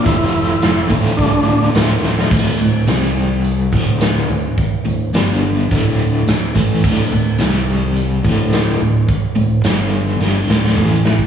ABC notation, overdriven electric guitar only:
X:1
M:4/4
L:1/8
Q:1/4=106
K:Dm
V:1 name="Overdriven electric guitar" clef=bass
[F,,C,F,A,CF]3 [D,,A,,D,A,F]3 [D,,A,,D,A,F]2 | [D,,A,,D,] [D,,A,,] [C,G,C]3 [D,,A,,D,]2 [D,,A,,] | z [D,,A,,] [G,,D,G,]2 [D,,A,,D,]2 [D,,A,,] [A,,E,A,] | [D,,A,,D,] [D,,A,,] [C,G,C]3 [D,,A,,D,]2 [D,,A,,] |
z [D,,A,,] [G,,D,G,]2 [G,,D,G,] [D,,A,,D,] [A,,E,A,]2 |]